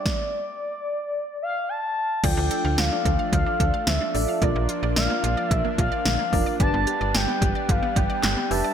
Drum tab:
CC |--------|x-------|--------|--------|
HH |--------|xxxxxxxo|xxxxxxxo|xxxxxxxo|
CP |--------|--------|--------|------x-|
SD |o-------|--o---o-|--o---o-|--o---o-|
BD |o-------|o--ooo--|o---oo-o|o--ooo--|